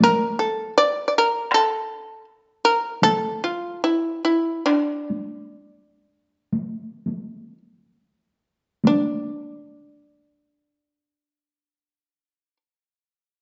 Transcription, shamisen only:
0.04 0.36 A#4 loud
0.39 0.73 A4 medium
0.78 1.05 D5 medium
1.08 1.13 D5 medium
1.18 1.51 A#4 medium
1.54 2.24 A4 medium
2.65 3.01 A#4 medium
3.03 3.41 A4 loud
3.44 3.81 F4 medium
3.84 4.22 E4 medium
4.25 4.64 E4 medium
4.66 7.58 D4 medium
8.87 12.57 D4 medium

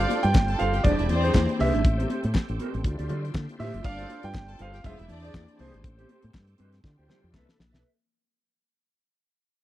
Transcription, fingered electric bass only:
0.24 0.33 G2 loud
0.35 0.54 G1 loud
0.61 0.80 G1 medium
0.85 0.96 E1 loud
0.99 1.08 E1 medium
1.10 1.29 E2 medium
1.35 1.46 E2 loud
1.60 1.71 C2 loud
1.74 1.83 G#1 medium
1.85 2.04 A1 loud
2.25 2.33 A2 medium
2.49 2.58 A1 loud
2.74 2.83 A1 loud
2.85 2.96 D2 loud
2.99 3.08 D2 loud
3.10 3.29 D3 loud
3.35 3.46 D3 loud
3.60 3.71 A2 medium
3.74 3.82 F#1 loud
3.85 4.04 G1 loud
4.24 4.32 G2 loud
4.35 4.54 G1 medium
4.60 4.79 G1 loud
4.85 4.96 E1 loud
4.99 5.08 E1 loud
5.10 5.29 E2 loud
5.35 5.45 E2 loud
5.60 5.71 C2 loud
5.74 5.82 G#1 loud
5.85 6.04 A1 loud
6.24 6.32 A2 loud
6.34 6.54 G2 medium
6.60 6.79 G2 medium
6.84 6.95 D3 loud
6.99 7.07 D2 medium
7.24 7.32 F2 medium
7.34 7.45 C2 loud
7.60 7.70 A#1 medium
7.74 7.82 B1 loud

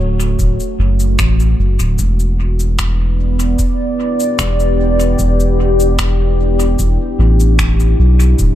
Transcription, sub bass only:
0.00 0.35 D1 medium
0.39 0.57 D1 medium
0.79 1.18 F#1 loud
1.19 1.55 A1 medium
1.59 1.78 F#1 medium
1.80 1.97 D1 medium
1.99 3.55 E1 loud
4.39 5.15 E1 medium
5.19 6.75 E1 loud
6.79 6.98 E1 medium
7.19 7.95 A1 loud
7.99 8.35 B1 medium
8.39 8.55 D1 loud

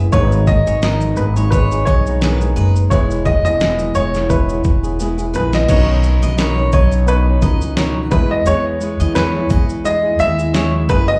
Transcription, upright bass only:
0.00 0.11 F#1 loud
0.13 0.63 G#1 medium
0.67 1.14 G#1 medium
1.18 1.83 G#1 medium
1.87 2.53 B1 medium
2.56 2.89 F#1 medium
2.91 3.41 E1 medium
3.45 3.91 E1 medium
3.96 4.61 E1 medium
4.65 5.31 E1 medium
5.35 5.67 A#1 medium
5.69 6.19 B1 loud
6.23 6.69 B1 medium
6.73 7.39 B1 loud
7.43 8.08 C#2 medium
8.12 8.44 E2 loud
8.47 8.97 E2 loud
9.01 9.47 E2 loud
9.51 10.16 E2 medium
10.20 10.86 D#2 medium
10.90 11.19 F#1 medium

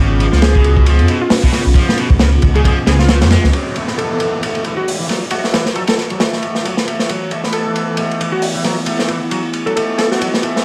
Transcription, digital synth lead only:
0.42 1.05 G#4 loud
1.21 1.34 F4 medium
2.55 2.61 G#4 medium
2.65 2.73 G#4 medium
2.87 2.97 G#4 medium
2.99 3.31 F4 loud
3.98 4.61 A4 medium
4.77 4.89 F#4 medium
5.31 5.46 F#4 medium
5.76 5.84 A4 medium
5.88 5.95 A4 medium
7.53 8.16 A4 medium
8.32 8.45 F#4 medium
9.66 9.72 A4 medium
9.76 9.84 A4 medium
9.98 10.08 A4 medium
10.11 10.43 F#4 medium

